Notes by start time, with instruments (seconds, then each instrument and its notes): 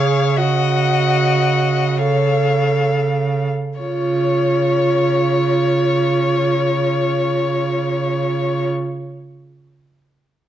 Already playing: cello C#3, viola G#4, violin C#5 F5
0.37 viola F#4, violin D#5 F#5
1.98 viola A4, violin C#5 F5
3.79 cello C#3, viola F4, violin C#5